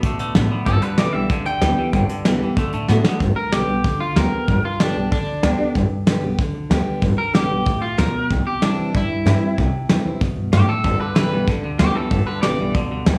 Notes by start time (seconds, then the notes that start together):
0.03 A2 B2 D3 A3, kick, closed hi-hat
0.18 A2 D3 A3, closed hi-hat
0.35 A1 A2 D3 B3, snare, closed hi-hat
0.51 D3 B3, muted upright bass stroke
0.66 G1 G2 D3 A4, kick, closed hi-hat
0.82 G2 D3 B4, muted upright bass stroke, closed hi-hat
0.98 B1 G2 D3 E3 G3 B3 G4 D5, snare, closed hi-hat
1.13 B1 G2 E3 B3 G4 E5
1.30 D2 G2 D3, kick, closed hi-hat
1.45 D2 G2 D3 G5, closed hi-hat
1.61 D2 G2 D3 E3 G3 B3 G4, snare, closed hi-hat
1.78 G2 E3 B3 G4, muted upright bass stroke
1.93 G1 G2 D3, kick, closed hi-hat
2.09 G2 D3, muted upright bass stroke, closed hi-hat
2.25 B1 G2 D3 E3 G3 B3 G4, snare, closed hi-hat
2.41 E2 G2 E3 B3 G4
2.57 D2 D3 A3, kick, closed hi-hat
2.73 A2 D3 A3, closed hi-hat
2.88 A2 D3 A3 B3 D4 F#4, snare
3.04 D3 B3 F#4, muted upright bass stroke, snare
3.20 G1 G2, kick, open hi-hat
3.36 A#4, muted upright bass stroke
3.52 B1 D3 G3 B3 G4, snare, open hi-hat
3.68 B1 B3 G4
3.84 D2 D3, kick, open hi-hat
4.00 D2 F4
4.16 D2 D3 G3 B3 G4 A#4, snare, open hi-hat
4.32 B3 G4, muted upright bass stroke
4.48 G1 G2, kick, open hi-hat
4.64 F4, muted upright bass stroke
4.79 B1 D3 G3 B3 D4 G4, snare, open hi-hat
4.95 B1 B3 G4
5.12 D2 D3 D4, kick, open hi-hat
5.27 D2
5.43 D2 D3 G3 B3 G4, snare, open hi-hat
5.58 B3 G4
5.75 G1 G2, kick, open hi-hat
5.90 muted upright bass stroke
6.06 B1 D3 G3 B3 G4, snare, open hi-hat
6.22 B1 B3 G4
6.38 D2 D3, kick, open hi-hat
6.55 D2
6.70 D2 D3 G3 B3 G4, snare, open hi-hat
6.86 muted upright bass stroke
7.02 G1 G2, kick, open hi-hat
7.18 A#4, muted upright bass stroke
7.34 B1 D3 G3 B3 G4, snare, open hi-hat
7.50 B1 B3 G4
7.66 D2 A2, kick, open hi-hat
7.82 D2 F4
7.98 D2 B2 A#4, snare, open hi-hat
8.30 C2 C3, kick, open hi-hat
8.46 G4, muted upright bass stroke
8.61 E2 E3 G3 C4 D4 E4, snare, open hi-hat
8.77 E2
8.94 G2 E4, kick, open hi-hat
9.09 G2
9.25 G2 E3 G3 C4 E4, snare, open hi-hat
9.42 C4 E4
9.58 C2 C3, kick, open hi-hat
9.74 muted upright bass stroke
9.89 E2 E3 G3 C4 E4, snare, open hi-hat
10.05 E2 C4 E4
10.21 G2 B2, kick, open hi-hat
10.36 G2
10.52 G2 A2 G4, snare, open hi-hat
10.69 A4, muted upright bass stroke
10.84 G1 G2 D3, kick, open hi-hat
11.00 G2 D3 B4, muted upright bass stroke
11.15 B1 G2 D3 E3 G3 B3 G4 B4, snare, open hi-hat
11.31 B1 G2 E3 B3 G4
11.47 D2 G2 D3, kick, open hi-hat
11.63 D2 G2 D3
11.79 D2 G2 D3 E3 G3 B3 G4, snare, open hi-hat
11.95 G2 E3 B3 G4 A4, muted upright bass stroke
12.10 G1 G2 D3, kick, open hi-hat
12.26 G2 D3 B4, muted upright bass stroke
12.42 B1 G2 D3 E3 G3 B3 G4 D5, snare, open hi-hat
12.59 B1 G2 E3 B3 G4
12.74 D2 G2 B2 D3, kick, open hi-hat
12.91 D2 G2 D3
13.06 D2 G2 C3 E3, snare